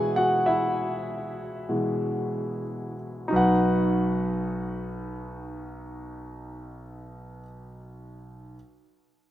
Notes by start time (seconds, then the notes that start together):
Already playing: B2 E3 G#3 E4 F#4 G#4 E5 F#5 G#5
0.16 F#4 F#5
0.46 E4 E5
1.69 B2 E3 G#3
3.28 D#4 F#4
3.32 B1 B4 F#5